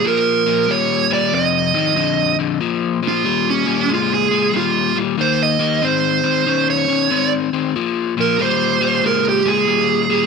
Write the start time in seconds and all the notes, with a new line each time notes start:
0.04 A#2 F3 A#4
0.46 A#2 F3
0.68 A#2 G3 C#5
1.10 A#2 G3 D5
1.33 F2 C3 D#5
1.74 F2 D#3
1.96 F2 D3
2.39 F2 D3
2.60 A#2 F3
3.03 A#2 F3
3.08 F4
3.25 A#2 G3
3.50 C#4
3.66 A#2 G3
3.89 A#2 G#3
3.94 F4
4.14 G#4
4.31 A#2 G#3
4.53 A#2 G3 F4
4.96 A#2 G3
5.18 D#3 A#3 C5
5.43 D#5
5.59 D#3 A#3
5.82 D#3 C4 C5
6.24 D#3 C4
6.47 D#3 C#4
6.70 C#5
6.88 D#3 C#4
7.11 D#3 C4
7.53 D#3 C4
7.76 A#2 F3
8.17 A#2 F3 A#4
8.39 A#2 G3 C5
8.81 A#2 G3
9.03 A#2 G#3 A#4
9.29 G4
9.45 A#2 G#3 G#4
9.67 A#2 G3
10.09 A#2 G3